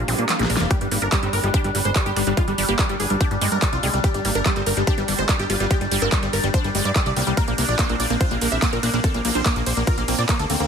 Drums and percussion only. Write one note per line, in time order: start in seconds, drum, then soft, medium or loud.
0.08 open hi-hat loud
0.19 closed hi-hat soft
0.29 snare medium
0.29 clap loud
0.29 closed hi-hat loud
0.39 snare medium
0.39 closed hi-hat soft
0.50 open hi-hat medium
0.57 snare loud
0.57 closed hi-hat soft
0.71 kick loud
0.71 closed hi-hat medium
0.81 closed hi-hat soft
0.91 open hi-hat loud
1.02 closed hi-hat soft
1.12 kick loud
1.12 clap loud
1.12 closed hi-hat loud
1.23 closed hi-hat soft
1.33 open hi-hat medium
1.44 closed hi-hat soft
1.54 kick loud
1.54 closed hi-hat medium
1.64 closed hi-hat soft
1.75 open hi-hat loud
1.85 closed hi-hat soft
1.96 kick loud
1.96 clap loud
1.96 closed hi-hat loud
2.06 closed hi-hat soft
2.16 open hi-hat medium
2.27 closed hi-hat soft
2.37 kick loud
2.37 closed hi-hat medium
2.48 closed hi-hat soft
2.58 open hi-hat loud
2.69 closed hi-hat soft
2.79 kick loud
2.79 clap loud
2.79 closed hi-hat loud
2.89 closed hi-hat soft
3.00 open hi-hat medium
3.10 closed hi-hat soft
3.21 kick loud
3.21 closed hi-hat medium
3.31 closed hi-hat soft
3.41 open hi-hat loud
3.52 closed hi-hat soft
3.62 kick loud
3.62 clap loud
3.62 closed hi-hat loud
3.73 closed hi-hat soft
3.83 open hi-hat loud
3.94 closed hi-hat soft
4.04 kick loud
4.04 closed hi-hat medium
4.14 closed hi-hat soft
4.25 open hi-hat loud
4.35 closed hi-hat soft
4.46 kick loud
4.46 clap loud
4.46 closed hi-hat loud
4.56 closed hi-hat soft
4.66 open hi-hat medium
4.77 closed hi-hat soft
4.87 kick loud
4.87 closed hi-hat medium
4.98 closed hi-hat soft
5.08 open hi-hat loud
5.19 closed hi-hat soft
5.29 kick loud
5.29 clap loud
5.29 closed hi-hat medium
5.39 closed hi-hat soft
5.50 open hi-hat loud
5.60 closed hi-hat soft
5.71 kick loud
5.71 closed hi-hat medium
5.81 closed hi-hat soft
5.91 open hi-hat loud
6.02 closed hi-hat soft
6.12 kick loud
6.12 clap loud
6.12 closed hi-hat medium
6.23 closed hi-hat soft
6.33 open hi-hat medium
6.44 closed hi-hat soft
6.54 kick loud
6.54 closed hi-hat medium
6.64 closed hi-hat soft
6.75 open hi-hat loud
6.85 closed hi-hat soft
6.96 kick loud
6.96 clap loud
6.96 closed hi-hat medium
7.06 closed hi-hat soft
7.16 open hi-hat loud
7.27 closed hi-hat soft
7.37 kick loud
7.37 closed hi-hat medium
7.37 ride medium
7.48 closed hi-hat soft
7.58 open hi-hat loud
7.58 ride medium
7.69 closed hi-hat soft
7.79 kick loud
7.79 clap loud
7.79 closed hi-hat loud
7.79 ride medium
7.89 closed hi-hat soft
8.00 open hi-hat medium
8.00 ride medium
8.10 closed hi-hat soft
8.21 kick loud
8.21 closed hi-hat medium
8.21 ride medium
8.31 closed hi-hat soft
8.41 open hi-hat loud
8.41 ride medium
8.52 closed hi-hat soft
8.62 kick loud
8.62 clap loud
8.62 closed hi-hat medium
8.62 ride medium
8.73 closed hi-hat soft
8.83 open hi-hat medium
8.83 ride medium
8.94 closed hi-hat soft
9.04 kick loud
9.04 closed hi-hat medium
9.04 ride medium
9.14 closed hi-hat soft
9.25 open hi-hat loud
9.25 ride medium
9.35 closed hi-hat soft
9.46 kick loud
9.46 clap loud
9.46 closed hi-hat loud
9.46 ride medium
9.56 closed hi-hat soft
9.66 open hi-hat medium
9.66 ride medium
9.77 closed hi-hat soft
9.87 kick loud
9.87 closed hi-hat medium
9.87 ride medium
9.98 closed hi-hat soft
10.08 open hi-hat loud
10.08 ride medium
10.19 closed hi-hat soft
10.29 kick loud
10.29 clap loud
10.29 closed hi-hat loud
10.29 ride medium
10.39 closed hi-hat soft
10.50 open hi-hat medium
10.50 ride medium
10.60 closed hi-hat soft